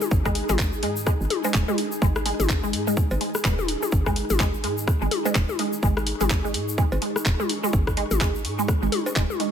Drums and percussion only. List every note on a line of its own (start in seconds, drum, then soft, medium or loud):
0.01 high tom medium
0.01 shaker medium
0.11 kick loud
0.11 shaker medium
0.25 kick medium
0.25 cross-stick medium
0.25 shaker soft
0.35 open hi-hat medium
0.49 open hi-hat soft
0.49 high tom medium
0.49 shaker medium
0.59 kick loud
0.59 clap loud
0.59 shaker medium
0.73 shaker soft
0.83 open hi-hat loud
0.97 shaker medium
1.07 kick loud
1.07 cross-stick medium
1.07 shaker medium
1.21 shaker soft
1.30 open hi-hat medium
1.30 high tom medium
1.44 cowbell medium
1.44 shaker medium
1.54 kick loud
1.54 clap medium
1.54 shaker medium
1.68 high tom medium
1.68 shaker soft
1.78 open hi-hat loud
1.92 shaker medium
2.02 kick loud
2.02 shaker medium
2.16 cross-stick medium
2.16 shaker soft
2.26 open hi-hat loud
2.40 open hi-hat soft
2.40 high tom medium
2.40 shaker medium
2.49 kick loud
2.49 clap medium
2.49 shaker medium
2.63 shaker soft
2.73 open hi-hat medium
2.88 shaker medium
2.97 kick loud
2.97 shaker medium
3.11 cowbell medium
3.11 shaker soft
3.21 open hi-hat medium
3.35 cross-stick medium
3.35 shaker medium
3.45 kick loud
3.45 clap medium
3.45 shaker medium
3.59 high tom medium
3.59 shaker soft
3.68 open hi-hat medium
3.83 high tom medium
3.83 shaker medium
3.92 kick loud
3.92 shaker medium
4.06 kick medium
4.06 cross-stick medium
4.06 shaker soft
4.16 open hi-hat medium
4.30 open hi-hat soft
4.30 high tom medium
4.30 shaker medium
4.40 kick loud
4.40 clap medium
4.40 shaker medium
4.54 shaker soft
4.64 open hi-hat medium
4.78 shaker medium
4.88 kick loud
4.88 cross-stick medium
4.88 shaker medium
5.02 shaker soft
5.11 open hi-hat medium
5.11 high tom medium
5.25 cowbell medium
5.25 shaker medium
5.35 kick loud
5.35 clap medium
5.35 shaker medium
5.49 high tom medium
5.49 shaker soft
5.59 open hi-hat loud
5.73 shaker medium
5.83 kick loud
5.83 shaker medium
5.97 cross-stick medium
5.97 shaker soft
6.07 open hi-hat medium
6.21 open hi-hat soft
6.21 high tom medium
6.21 shaker medium
6.30 kick loud
6.30 clap medium
6.30 shaker medium
6.45 shaker soft
6.54 open hi-hat medium
6.69 shaker medium
6.78 kick loud
6.78 shaker medium
6.92 cowbell medium
6.92 shaker soft
7.02 open hi-hat medium
7.16 cross-stick medium
7.16 shaker medium
7.26 kick loud
7.26 clap medium
7.26 shaker medium
7.40 high tom medium
7.40 shaker soft
7.49 open hi-hat medium
7.63 high tom medium
7.63 shaker medium
7.73 kick loud
7.73 shaker medium
7.87 kick medium
7.87 cross-stick medium
7.87 shaker soft
7.97 open hi-hat medium
8.11 open hi-hat soft
8.11 high tom medium
8.11 shaker medium
8.21 kick loud
8.21 clap medium
8.21 shaker medium
8.35 shaker soft
8.45 open hi-hat medium
8.59 shaker medium
8.68 kick loud
8.68 cross-stick medium
8.68 shaker medium
8.83 shaker soft
8.92 open hi-hat medium
8.92 high tom medium
9.06 cowbell medium
9.06 shaker medium
9.16 kick loud
9.16 clap medium
9.16 shaker medium
9.30 high tom medium
9.30 shaker soft
9.40 open hi-hat medium